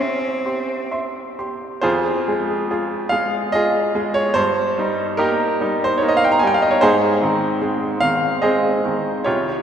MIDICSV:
0, 0, Header, 1, 3, 480
1, 0, Start_track
1, 0, Key_signature, -4, "minor"
1, 0, Tempo, 923077
1, 958, Time_signature, 3, 2, 24, 8
1, 958, Tempo, 851064
1, 1438, Tempo, 834492
1, 2878, Tempo, 801068
1, 4318, Tempo, 831025
1, 5485, End_track
2, 0, Start_track
2, 0, Title_t, "Grand piano"
2, 0, Program_c, 0, 0
2, 0, Control_c, 0, 64, 127
2, 0, Note_on_c, 0, 36, 48
2, 0, Note_on_c, 0, 67, 34
2, 0, Note_on_c, 0, 76, 31
2, 0, Note_on_c, 0, 84, 34
2, 1, Note_off_c, 0, 84, 0
2, 1, Note_on_c, 0, 84, 32
2, 215, Note_off_c, 0, 76, 0
2, 216, Note_off_c, 0, 84, 0
2, 236, Note_off_c, 0, 67, 0
2, 236, Note_on_c, 0, 67, 35
2, 238, Note_on_c, 0, 84, 35
2, 457, Note_off_c, 0, 67, 0
2, 458, Note_off_c, 0, 84, 0
2, 475, Note_on_c, 0, 76, 36
2, 477, Note_on_c, 0, 84, 39
2, 700, Note_off_c, 0, 76, 0
2, 700, Note_off_c, 0, 84, 0
2, 722, Note_on_c, 0, 67, 34
2, 722, Note_on_c, 0, 84, 37
2, 937, Note_off_c, 0, 36, 0
2, 937, Note_off_c, 0, 67, 0
2, 937, Note_off_c, 0, 84, 0
2, 944, Note_on_c, 0, 72, 81
2, 950, Note_on_c, 0, 65, 64
2, 951, Note_on_c, 0, 68, 63
2, 957, Note_on_c, 0, 41, 67
2, 969, Control_c, 0, 64, 0
2, 1048, Control_c, 0, 64, 127
2, 1197, Note_off_c, 0, 68, 0
2, 1206, Note_on_c, 0, 56, 42
2, 1206, Note_on_c, 0, 68, 48
2, 1418, Note_off_c, 0, 56, 0
2, 1418, Note_off_c, 0, 68, 0
2, 1438, Note_off_c, 0, 65, 0
2, 1446, Note_on_c, 0, 65, 41
2, 1447, Note_on_c, 0, 68, 51
2, 1661, Note_off_c, 0, 65, 0
2, 1661, Note_off_c, 0, 68, 0
2, 1668, Note_on_c, 0, 77, 80
2, 1672, Note_off_c, 0, 72, 0
2, 1683, Note_on_c, 0, 56, 49
2, 1683, Note_on_c, 0, 68, 47
2, 1899, Note_off_c, 0, 56, 0
2, 1900, Note_off_c, 0, 68, 0
2, 1915, Note_off_c, 0, 77, 0
2, 1915, Note_on_c, 0, 75, 90
2, 1929, Note_on_c, 0, 65, 52
2, 1931, Note_on_c, 0, 68, 61
2, 2140, Note_off_c, 0, 65, 0
2, 2141, Note_off_c, 0, 68, 0
2, 2160, Note_on_c, 0, 56, 49
2, 2162, Note_on_c, 0, 68, 54
2, 2271, Note_on_c, 0, 73, 87
2, 2275, Note_off_c, 0, 75, 0
2, 2374, Note_off_c, 0, 41, 0
2, 2375, Note_off_c, 0, 56, 0
2, 2376, Note_off_c, 0, 68, 0
2, 2384, Note_on_c, 0, 72, 96
2, 2394, Note_off_c, 0, 73, 0
2, 2394, Note_on_c, 0, 43, 68
2, 2409, Control_c, 0, 64, 0
2, 2517, Control_c, 0, 64, 127
2, 2637, Note_on_c, 0, 55, 56
2, 2644, Note_on_c, 0, 63, 58
2, 2854, Note_off_c, 0, 55, 0
2, 2857, Note_off_c, 0, 63, 0
2, 2864, Note_on_c, 0, 70, 80
2, 2870, Note_off_c, 0, 72, 0
2, 2871, Note_on_c, 0, 63, 64
2, 2874, Note_on_c, 0, 67, 69
2, 2876, Note_on_c, 0, 58, 47
2, 3096, Note_off_c, 0, 58, 0
2, 3120, Note_off_c, 0, 63, 0
2, 3124, Note_on_c, 0, 55, 55
2, 3129, Note_on_c, 0, 63, 57
2, 3241, Note_off_c, 0, 67, 0
2, 3260, Note_off_c, 0, 70, 0
2, 3265, Note_on_c, 0, 72, 88
2, 3341, Note_off_c, 0, 55, 0
2, 3343, Note_off_c, 0, 63, 0
2, 3345, Note_on_c, 0, 73, 69
2, 3346, Note_off_c, 0, 72, 0
2, 3370, Note_on_c, 0, 58, 53
2, 3372, Note_on_c, 0, 63, 61
2, 3410, Note_off_c, 0, 73, 0
2, 3410, Note_on_c, 0, 75, 84
2, 3460, Note_on_c, 0, 77, 83
2, 3464, Note_off_c, 0, 75, 0
2, 3506, Note_on_c, 0, 79, 76
2, 3508, Note_off_c, 0, 77, 0
2, 3549, Note_off_c, 0, 79, 0
2, 3549, Note_on_c, 0, 82, 75
2, 3583, Note_off_c, 0, 58, 0
2, 3584, Note_off_c, 0, 63, 0
2, 3590, Note_off_c, 0, 82, 0
2, 3595, Note_on_c, 0, 80, 78
2, 3617, Note_on_c, 0, 55, 56
2, 3619, Note_on_c, 0, 63, 58
2, 3635, Note_off_c, 0, 80, 0
2, 3642, Note_on_c, 0, 79, 84
2, 3684, Note_off_c, 0, 79, 0
2, 3684, Note_on_c, 0, 77, 73
2, 3732, Note_off_c, 0, 77, 0
2, 3732, Note_on_c, 0, 75, 71
2, 3783, Note_on_c, 0, 73, 76
2, 3785, Note_off_c, 0, 75, 0
2, 3815, Note_off_c, 0, 43, 0
2, 3825, Note_off_c, 0, 55, 0
2, 3826, Note_off_c, 0, 63, 0
2, 3840, Note_off_c, 0, 73, 0
2, 3845, Note_on_c, 0, 72, 97
2, 3849, Control_c, 0, 64, 0
2, 3851, Note_on_c, 0, 63, 73
2, 3854, Note_on_c, 0, 68, 83
2, 3858, Note_on_c, 0, 44, 73
2, 3935, Control_c, 0, 64, 127
2, 4088, Note_on_c, 0, 51, 52
2, 4093, Note_on_c, 0, 60, 53
2, 4299, Note_off_c, 0, 51, 0
2, 4302, Note_off_c, 0, 60, 0
2, 4327, Note_on_c, 0, 56, 42
2, 4327, Note_on_c, 0, 60, 47
2, 4535, Note_off_c, 0, 56, 0
2, 4535, Note_off_c, 0, 60, 0
2, 4535, Note_off_c, 0, 63, 0
2, 4536, Note_off_c, 0, 68, 0
2, 4552, Note_on_c, 0, 77, 92
2, 4556, Note_off_c, 0, 72, 0
2, 4560, Note_on_c, 0, 51, 45
2, 4561, Note_on_c, 0, 60, 47
2, 4772, Note_off_c, 0, 51, 0
2, 4773, Note_off_c, 0, 60, 0
2, 4789, Note_on_c, 0, 75, 76
2, 4791, Note_off_c, 0, 77, 0
2, 4795, Note_on_c, 0, 68, 62
2, 4798, Note_on_c, 0, 72, 60
2, 4802, Note_on_c, 0, 56, 45
2, 4804, Note_on_c, 0, 60, 55
2, 5013, Note_off_c, 0, 56, 0
2, 5014, Note_off_c, 0, 60, 0
2, 5041, Note_on_c, 0, 51, 41
2, 5043, Note_on_c, 0, 60, 42
2, 5252, Note_off_c, 0, 68, 0
2, 5253, Note_off_c, 0, 72, 0
2, 5255, Note_off_c, 0, 51, 0
2, 5257, Note_off_c, 0, 60, 0
2, 5259, Note_off_c, 0, 44, 0
2, 5268, Note_on_c, 0, 73, 76
2, 5272, Note_off_c, 0, 75, 0
2, 5275, Note_on_c, 0, 65, 58
2, 5275, Note_on_c, 0, 67, 57
2, 5282, Note_on_c, 0, 36, 52
2, 5284, Control_c, 0, 64, 0
2, 5389, Control_c, 0, 64, 127
2, 5485, Note_off_c, 0, 36, 0
2, 5485, Note_off_c, 0, 65, 0
2, 5485, Note_off_c, 0, 67, 0
2, 5485, Note_off_c, 0, 73, 0
2, 5485, End_track
3, 0, Start_track
3, 0, Title_t, "Cello"
3, 0, Program_c, 1, 42
3, 0, Note_on_c, 1, 60, 55
3, 477, Note_off_c, 1, 60, 0
3, 5485, End_track
0, 0, End_of_file